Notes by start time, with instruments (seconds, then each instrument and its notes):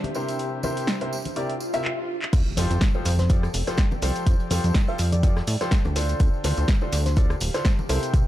Already playing: ambient pad D4 G4 C5 E5
0.04 closed hi-hat, high conga
0.15 grand piano C3 E4 G4 A#4 C5, tambourine
0.28 closed hi-hat, tambourine
0.39 closed hi-hat, tambourine
0.63 grand piano C3 E4 G4 A#4 C5, tambourine, high conga
0.77 closed hi-hat, tambourine
0.87 snare, closed hi-hat, tambourine
1.01 grand piano C3 E4 G4 A#4 C5, closed hi-hat
1.13 tambourine
1.25 closed hi-hat, tambourine, high conga
1.36 grand piano C3 E4 G4 A#4 D5, closed hi-hat, tambourine, swell
1.50 closed hi-hat
1.60 tambourine
1.73 grand piano C3 E4 G4 A#4 E5, closed hi-hat, tambourine
1.85 clap
2.22 clap
2.33 analog synth bass F2, ambient pad A4, kick, closed hi-hat, tambourine, crash, impact, shaker
2.46 ambient pad D5 G5, tambourine
2.57 analog synth bass F2, grand piano F3 F4 G4 A4 C5, snare, closed hi-hat, open hi-hat, tambourine, high conga, shaker
2.71 analog synth bass F2, closed hi-hat, tambourine, shaker
2.81 kick, snare, closed hi-hat, tambourine, shaker
2.94 grand piano F3 F4 G4 A4 C5, tambourine
3.05 analog synth bass F2, closed hi-hat, open hi-hat, tambourine, shaker
3.19 fm electric piano C5, snare, closed hi-hat, tambourine, high conga, shaker
3.29 grand piano F3 F4 G4 A4 D5, kick, closed hi-hat, tambourine, shaker
3.43 cross-stick, closed hi-hat, tambourine
3.54 analog synth bass F1, closed hi-hat, open hi-hat, tambourine, shaker
3.67 grand piano F3 F4 G4 A4 C5, cross-stick, snare, closed hi-hat, tambourine, shaker
3.77 kick, snare, closed hi-hat, tambourine, shaker
3.91 tambourine, high conga
4.02 analog synth bass C2, grand piano F3 F4 G4 A4 C5, closed hi-hat, open hi-hat, tambourine, shaker
4.16 closed hi-hat, tambourine, shaker
4.26 analog synth bass F2, kick, closed hi-hat, tambourine, shaker
4.39 closed hi-hat, tambourine
4.51 analog synth bass F2, grand piano F3 F4 G4 A4 C5, closed hi-hat, open hi-hat, tambourine, high conga, shaker
4.64 analog synth bass F2, closed hi-hat, tambourine, shaker
4.74 kick, snare, closed hi-hat, tambourine, shaker
4.88 grand piano F3 F4 G4 A4 C5, fm electric piano F5, tambourine
4.98 analog synth bass F2, closed hi-hat, open hi-hat, tambourine, shaker
5.12 fm electric piano D5, closed hi-hat, tambourine, high conga, shaker
5.23 grand piano F3 F4 G4 A4 D5, kick, closed hi-hat, tambourine, shaker
5.36 cross-stick, snare, tambourine
5.47 analog synth bass A2, closed hi-hat, open hi-hat, tambourine, shaker
5.61 grand piano F3 F4 G4 A4 C5, cross-stick, snare, closed hi-hat, tambourine, shaker
5.71 kick, snare, closed hi-hat, tambourine, shaker
5.85 analog synth bass D2, closed hi-hat, tambourine, high conga
5.96 grand piano D3 D4 F4 A4 C5, ambient pad G4, snare, closed hi-hat, open hi-hat, tambourine, shaker
6.05 ambient pad C5
6.09 closed hi-hat, tambourine, shaker
6.20 analog synth bass D2, kick, closed hi-hat, tambourine, shaker
6.34 tambourine
6.38 ambient pad F5
6.44 analog synth bass D2, grand piano D3 D4 F4 A4 C5, snare, closed hi-hat, open hi-hat, tambourine, high conga, shaker
6.57 analog synth bass D2, closed hi-hat, tambourine, shaker
6.68 kick, snare, closed hi-hat, tambourine, shaker
6.81 grand piano D3 D4 F4 A4 C5, tambourine
6.92 analog synth bass D2, closed hi-hat, open hi-hat, tambourine, shaker
7.06 fm electric piano C5, snare, closed hi-hat, tambourine, high conga, shaker
7.16 grand piano D3 D4 F4 A4 D5, kick, closed hi-hat, tambourine, shaker
7.30 cross-stick, closed hi-hat, tambourine
7.40 analog synth bass D1, closed hi-hat, open hi-hat, tambourine, shaker
7.54 grand piano D3 D4 F4 A4 C5, fm electric piano C5, cross-stick, snare, closed hi-hat, tambourine, shaker
7.65 kick, snare, closed hi-hat, tambourine, shaker
7.79 tambourine, high conga
7.89 analog synth bass C2, grand piano C3 E4 G4 A#4 C5, fm electric piano A4, closed hi-hat, open hi-hat, tambourine, shaker
8.03 closed hi-hat, tambourine, shaker
8.13 analog synth bass C2, kick, closed hi-hat, tambourine, shaker